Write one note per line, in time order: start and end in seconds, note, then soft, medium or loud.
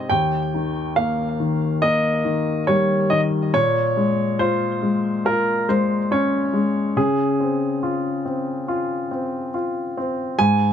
0.00 0.12 G#3 soft
0.00 0.11 C4 soft
0.00 0.11 D#4 soft
0.00 0.12 G4 soft
0.09 3.49 D#2 soft
0.09 0.92 G5 medium
0.54 1.38 D#3 soft
0.96 1.81 A#3 soft
0.96 1.84 F5 medium
1.40 2.23 D#3 soft
1.82 3.50 A#3 soft
1.82 2.63 D#5 medium
2.25 3.09 D#3 soft
2.67 3.51 G3 soft
2.67 3.11 C#5 medium
3.10 3.52 D#3 soft
3.10 3.20 D#5 medium
3.54 6.92 A#2 soft
3.54 4.42 C#5 medium
3.97 4.81 G#3 soft
4.39 5.24 F4 soft
4.39 5.27 C5 medium
4.82 5.67 G#3 soft
5.25 6.92 F4 soft
5.25 5.69 A#4 medium
5.68 6.52 G#3 soft
5.68 6.12 C5 medium
6.11 6.94 C#4 soft
6.11 6.99 C#5 medium
6.53 6.95 G#3 soft
6.97 10.35 C#3 soft
6.97 9.50 G#4 medium
7.40 8.24 C4 soft
7.83 8.67 F4 soft
8.25 9.10 C4 soft
8.68 9.53 F4 soft
9.11 9.96 C4 soft
9.54 10.37 F4 soft
9.97 10.38 C4 soft
10.39 10.73 G#2 medium
10.39 10.73 G#5 medium